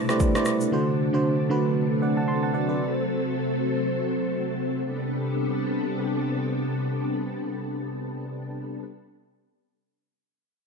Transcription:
Already playing: string machine B2 C3 G3 D4 A4, fm electric piano A3 E4 G4 B4 C5 D5 E5
0.09 fm electric piano A3 E4 G4 B4 C5 D5, cross-stick, shaker
0.20 kick, shaker
0.35 fm electric piano A3 E4 G4 B4 C5 D5, cross-stick, shaker
0.45 cross-stick, shaker
0.61 shaker
0.72 fm electric piano D3 A3 F#4 C5, string machine F#3 A3 A4
1.13 fm electric piano D3 A3 F#4 C5
1.49 fm electric piano D3 A3 F#4 B4
2.02 fm electric piano D5 F#5
2.17 fm electric piano F#5 A5
2.28 fm electric piano A5 C6
2.43 fm electric piano F#5 A5
2.54 fm electric piano D5 F#5
2.69 fm electric piano B4 D5
2.79 string machine C4
4.85 string machine C3 G3 B3 D4 A4

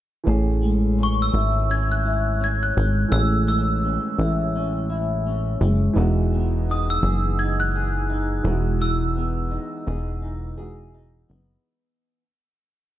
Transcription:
0.24 analog synth bass A1, clean electric guitar A2, upright piano E3 A3 C#4
0.29 upright piano G#4
0.63 clean electric guitar G#3
0.98 clean electric guitar C#4
1.03 glockenspiel C#6
1.22 glockenspiel E6
1.34 analog synth bass G#1, clean electric guitar E4
1.70 clean electric guitar C#4, glockenspiel G#6
1.92 glockenspiel F#6
2.05 clean electric guitar E4
2.41 clean electric guitar C#4, glockenspiel G#6
2.63 glockenspiel F#6
2.77 analog synth bass G#1, clean electric guitar G#3
3.08 analog synth bass A1, upright piano E3 A3 C#4, glockenspiel E6
3.13 clean electric guitar A2, upright piano G#4
3.48 clean electric guitar G#3, glockenspiel E6
3.84 clean electric guitar C#4
4.19 analog synth bass A1, clean electric guitar E4
4.56 clean electric guitar C#4
4.90 clean electric guitar E4
5.27 clean electric guitar C#4
5.61 analog synth bass F#1, clean electric guitar G#3
5.93 analog synth bass E1, upright piano E3 G#3 D#4, clean electric guitar E3
5.99 upright piano F#4
6.34 clean electric guitar B3
6.70 clean electric guitar D#4, glockenspiel D#6
6.90 glockenspiel E6
7.03 analog synth bass F#1, clean electric guitar G#4
7.39 clean electric guitar D#4, glockenspiel G#6
7.60 glockenspiel F#6
7.75 clean electric guitar G#4
8.10 clean electric guitar D#4
8.43 analog synth bass E1, upright piano E3 G#3 D#4, clean electric guitar E3
8.48 upright piano F#4
8.81 clean electric guitar E3, glockenspiel E6
9.17 clean electric guitar B3
9.51 clean electric guitar D#4
9.87 analog synth bass E1, clean electric guitar G#4
10.22 clean electric guitar D#4
10.57 upright piano E3 G#3 D#4 F#4, clean electric guitar G#4
10.94 clean electric guitar D#4
11.29 analog synth bass F#1, clean electric guitar B3

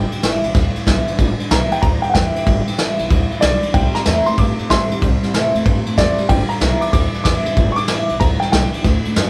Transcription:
Already playing: steel-string acoustic guitar G3, upright piano G5
0.12 clean electric guitar G2 D3, muted upright bass stroke, ride
0.22 upright bass G1, clean electric guitar G2 E3, steel-string acoustic guitar G3 B3 E4, snare, ride
0.43 upright bass B1, clean electric guitar G2 E3, steel-string acoustic guitar B3 E4, ride
0.55 upright bass D2, clean electric guitar G2 E3, steel-string acoustic guitar D3, kick, snare, ride
0.75 clean electric guitar G2 E3, muted upright bass stroke, ride
0.86 upright bass B1, clean electric guitar G2 D3, steel-string acoustic guitar G3 B3 E4, kick, snare, ride
1.06 clean electric guitar G2 D3, steel-string acoustic guitar B3 E4, ride
1.18 upright bass G1, clean electric guitar G2 D3, steel-string acoustic guitar G3, kick, ride
1.39 clean electric guitar G2 D3, muted upright bass stroke, ride
1.50 upright bass B1, clean electric guitar G2 E3, steel-string acoustic guitar G3 B3 E4, upright piano A#5, snare, ride
1.70 clean electric guitar G2 E3, steel-string acoustic guitar B3 E4, upright piano G5, ride
1.82 upright bass D2, clean electric guitar G2 E3, upright piano A#5, kick, ride
2.02 clean electric guitar G2 E3, upright piano G5, muted upright bass stroke, ride
2.09 upright piano F#5
2.14 upright bass E2, clean electric guitar G2 D3, steel-string acoustic guitar G3 B3 E4, upright piano G5, kick, snare, ride
2.35 clean electric guitar G2 D3, muted upright bass stroke, ride
2.46 upright bass G1, clean electric guitar G2 D3, steel-string acoustic guitar G3, kick, ride
2.67 clean electric guitar G2 D3, muted upright bass stroke, ride
2.77 upright bass G1, clean electric guitar G2 E3, steel-string acoustic guitar G3 B3 E4, snare, ride
2.98 upright bass B1, clean electric guitar G2 E3, steel-string acoustic guitar B3 E4, ride
3.10 upright bass D2, clean electric guitar G2 E3, steel-string acoustic guitar A2, kick, ride
3.31 clean electric guitar G2 E3, muted upright bass stroke, ride
3.41 upright bass B1, clean electric guitar G2 D3, steel-string acoustic guitar B2, upright piano D5, snare, ride
3.62 clean electric guitar G2 D3, muted upright bass stroke, ride
3.74 upright bass C2, steel-string acoustic guitar C3, clean electric guitar C3 G3, upright piano G5, kick, ride
3.95 clean electric guitar C3 G3, upright piano A#5, snare, ride
4.05 upright bass E2, clean electric guitar C3 A3, steel-string acoustic guitar E3 A3 C4 E4, snare, ride
4.26 clean electric guitar C3 A3, steel-string acoustic guitar C4 E4, upright piano C6, muted upright bass stroke, ride
4.38 upright bass G2, clean electric guitar C3 A3, upright piano D6, kick, ride
4.59 clean electric guitar C3 A3, muted upright bass stroke, ride
4.69 upright bass A2, clean electric guitar C3 G3, steel-string acoustic guitar E3 A3 C4 E4, upright piano E5 C6, kick, snare, ride
4.90 clean electric guitar C3 G3, steel-string acoustic guitar C4 E4, muted upright bass stroke, ride
5.02 upright bass C2, steel-string acoustic guitar C3, clean electric guitar C3 G3, kick, ride
5.22 clean electric guitar C3 G3, muted upright bass stroke, snare, ride
5.34 upright bass C2, clean electric guitar C3 A3, steel-string acoustic guitar E3 A3 C4 E4, snare, ride
5.54 upright bass E2, clean electric guitar C3 A3, steel-string acoustic guitar C4 E4, ride
5.66 upright bass G2, steel-string acoustic guitar G2, clean electric guitar C3 A3, kick, ride
5.86 clean electric guitar C3 A3, muted upright bass stroke, ride
5.97 upright bass E2, clean electric guitar C3 G3, steel-string acoustic guitar E3 A3 C4 E4, upright piano D5, kick, snare, ride
6.17 clean electric guitar C3 G3, steel-string acoustic guitar C4 E4, muted upright bass stroke, ride
6.29 upright bass G1, clean electric guitar G2 D3, steel-string acoustic guitar G3, upright piano G5, kick, snare, ride
6.49 clean electric guitar G2 D3, upright piano A#5, muted upright bass stroke, ride
6.60 upright bass B1, clean electric guitar G2 E3, steel-string acoustic guitar G3 B3 E4, snare, ride
6.81 clean electric guitar G2 E3, steel-string acoustic guitar B3 E4, upright piano D6, muted upright bass stroke, ride
6.92 upright bass D2, clean electric guitar G2 E3, steel-string acoustic guitar D3, upright piano D6, kick, snare, ride
7.13 clean electric guitar G2 E3, muted upright bass stroke, ride
7.24 upright bass E2, clean electric guitar G2 D3, steel-string acoustic guitar G3 B3 E4, upright piano D6, kick, snare, ride
7.46 clean electric guitar G2 D3, muted upright bass stroke, ride
7.57 upright bass G1, clean electric guitar G2 D3, steel-string acoustic guitar G3, kick, ride
7.72 upright piano C#6
7.76 clean electric guitar G2 D3, upright piano D6, muted upright bass stroke, ride
7.88 upright bass G1, clean electric guitar G2 E3, steel-string acoustic guitar G3 B3 E4, snare, ride
8.09 upright bass B1, clean electric guitar G2 E3, steel-string acoustic guitar B3 E4, ride
8.20 upright bass D2, clean electric guitar G2 E3, steel-string acoustic guitar F3, upright piano A#5, kick, ride
8.40 clean electric guitar G2 E3, upright piano G5, muted upright bass stroke, snare, ride
8.52 upright bass B1, clean electric guitar G2 D3, steel-string acoustic guitar E3, upright piano G5, snare, ride
8.74 clean electric guitar G2 D3, muted upright bass stroke, ride
8.84 upright bass D2, clean electric guitar D3 A3, steel-string acoustic guitar D3, kick, snare, ride
9.05 clean electric guitar D3 A3, muted upright bass stroke, ride
9.16 upright bass F#2, steel-string acoustic guitar D3 A3 B3 F#4, clean electric guitar D3 B3, snare, ride

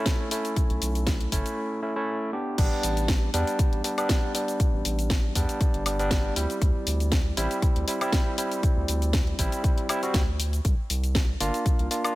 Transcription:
Already playing: tine electric piano A3 C#4 E4
0.06 kick, snare, closed hi-hat, shaker
0.31 tine electric piano A3 C#4 E4, open hi-hat, shaker
0.45 closed hi-hat, shaker
0.56 kick, closed hi-hat, shaker
0.70 analog synth bass B1, closed hi-hat
0.82 analog synth bass B1, open hi-hat, shaker
0.95 closed hi-hat, shaker
1.07 kick, snare, closed hi-hat, shaker
1.21 closed hi-hat
1.32 analog synth bass F#1, tine electric piano A3 C#4 E4, kick, open hi-hat, shaker
1.46 closed hi-hat, shaker
1.83 tine electric piano A3 C#4 E4
1.96 tine electric piano A3 C#4 E4
2.33 tine electric piano B3 D4 G4
2.58 analog synth bass A1, tine electric piano G3 B3 D4, kick, closed hi-hat, crash, shaker
2.83 analog synth bass A1, open hi-hat, shaker
2.97 closed hi-hat, shaker
3.08 kick, snare, closed hi-hat, shaker
3.34 analog synth bass E2, tine electric piano G3 B3 D4, open hi-hat, shaker
3.47 closed hi-hat, shaker
3.59 kick, closed hi-hat, shaker
3.73 analog synth bass A1, closed hi-hat
3.84 tine electric piano G3 B3 D4, open hi-hat, shaker
3.98 tine electric piano G3 B3 D4, closed hi-hat, high woodblock, shaker
4.09 kick, snare, closed hi-hat, shaker
4.35 tine electric piano G3 B3 D4, open hi-hat, shaker
4.48 closed hi-hat, shaker
4.60 kick, closed hi-hat, shaker
4.73 analog synth bass A1
4.85 analog synth bass A1, open hi-hat, shaker
4.99 closed hi-hat, shaker
5.10 kick, snare, closed hi-hat, shaker
5.35 analog synth bass E2, tine electric piano G3 B3 D4, kick, open hi-hat, shaker
5.49 closed hi-hat, shaker
5.61 kick, closed hi-hat, shaker
5.74 analog synth bass G1, closed hi-hat
5.86 tine electric piano G3 B3 D4, open hi-hat, high woodblock, shaker
5.99 tine electric piano G3 B3 D4, closed hi-hat, shaker
6.11 kick, snare, closed hi-hat, shaker
6.36 analog synth bass D2, tine electric piano G3 C4 E4, open hi-hat, shaker
6.50 closed hi-hat, shaker
6.62 analog synth bass D2, kick, closed hi-hat, shaker
6.87 analog synth bass D2, open hi-hat, shaker
7.00 closed hi-hat, shaker
7.12 kick, snare, closed hi-hat, shaker
7.37 analog synth bass A1, tine electric piano G3 C4 E4, open hi-hat, shaker
7.51 closed hi-hat, shaker
7.62 kick, closed hi-hat, shaker
7.76 analog synth bass D2, closed hi-hat
7.88 tine electric piano G3 C4 E4, open hi-hat, shaker
8.01 tine electric piano G3 C4 E4, closed hi-hat, high woodblock, shaker
8.12 kick, snare, closed hi-hat, shaker
8.38 tine electric piano G3 C4 E4, open hi-hat, shaker
8.52 closed hi-hat, shaker
8.63 kick, closed hi-hat, shaker
8.77 analog synth bass D2
8.88 analog synth bass D2, open hi-hat, shaker
9.02 closed hi-hat, shaker
9.13 kick, snare, closed hi-hat, shaker
9.27 closed hi-hat
9.39 analog synth bass A1, tine electric piano G3 C4 E4, kick, open hi-hat, shaker
9.52 closed hi-hat, shaker
9.64 kick, closed hi-hat, shaker
9.78 closed hi-hat
9.89 tine electric piano G3 C4 E4, open hi-hat, high woodblock, shaker
10.03 tine electric piano G3 C4 F#4, closed hi-hat, shaker
10.14 analog synth bass D2, kick, snare, closed hi-hat, shaker
10.40 open hi-hat, shaker
10.53 closed hi-hat, shaker
10.65 analog synth bass C2, kick, closed hi-hat, shaker
10.90 analog synth bass C2, open hi-hat, shaker
11.04 closed hi-hat, shaker
11.15 kick, snare, closed hi-hat, shaker
11.40 analog synth bass G1, tine electric piano A#3 D4 F4, open hi-hat, shaker
11.54 closed hi-hat, shaker
11.66 kick, closed hi-hat, shaker
11.79 analog synth bass C2, closed hi-hat
11.91 tine electric piano A#3 D4 F4, open hi-hat, shaker
12.04 tine electric piano A#3 D4 F4, closed hi-hat, high woodblock, shaker

